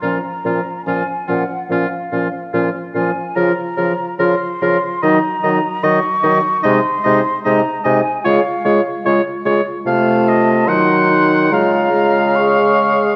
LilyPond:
<<
  \new Staff \with { instrumentName = "Flute" } { \time 4/4 \key des \major \tempo 4 = 73 bes''4 aes''8 ges''8 f''4 r8 aes''8 | bes''4 c'''4 bes''4 des'''4 | c'''4 bes''8 aes''8 f''4 r4 | a''4 c'''4 bes''4 des'''4 | }
  \new Staff \with { instrumentName = "Oboe" } { \time 4/4 \key des \major f'8 f'8 f'8 f'8 f'8 f'8 f'8 f'8 | bes'8 bes'8 bes'8 bes'8 ees''8 ees''8 ees''8 ees''8 | ees''8 ees''8 ees''8 ees''8 des''8 des''8 des''8 des''8 | f''8 ees''8 ges''4 f''2 | }
  \new Staff \with { instrumentName = "Clarinet" } { \time 4/4 \key des \major des'8 des'8 des'8 des'8 des'8 des'8 des'8 des'8 | f'8 f'8 f'8 f'8 ees'8 ees'8 ees'8 ees'8 | ees'8 ees'8 ees'8 ees'8 f'8 f'8 f'8 f'8 | f'4 ees'8 ees'8 f'4 aes'4 | }
  \new Staff \with { instrumentName = "French horn" } { \clef bass \time 4/4 \key des \major f8 f8 f8 f8 f8 f8 f8 f8 | f8 f8 f8 f8 ges8 ges8 ges8 ges8 | aes8 aes8 aes8 aes8 aes8 aes8 aes8 aes8 | a4 ges4 aes8 aes4. | }
  \new Staff \with { instrumentName = "Bassoon" } { \clef bass \time 4/4 \key des \major bes,8 bes,8 bes,8 bes,8 bes,8 bes,8 bes,8 bes,8 | des8 des8 des8 des8 ees8 ees8 ees8 ees8 | c8 c8 c8 c8 des8 des8 des8 des8 | c4 ees4 des2 | }
>>